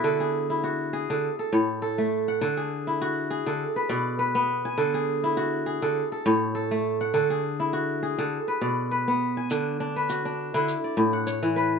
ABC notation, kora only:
X:1
M:4/4
L:1/16
Q:"Swing 16ths" 1/4=102
K:Dlyd
V:1 name="Kora"
[EA] G2 E3 G A2 A c2 A3 f | A G2 E3 G A2 B d2 B3 g | A G2 E3 G A2 A c2 A3 f | A G2 E3 G A2 B d2 B3 g |
D2 D B2 D2 E2 d2 f c2 B2 |]
V:2 name="Kora" clef=bass
D,2 z2 F2 z D, z2 A,,2 z A,2 z | D,2 z2 F2 z D, z2 B,,2 z B,2 z | D,2 z2 F2 z D, z2 A,,2 z A,2 z | D,2 z2 F2 z D, z2 B,,2 z B,2 z |
D,2 z2 F2 z D, z2 A,,2 z E,2 z |]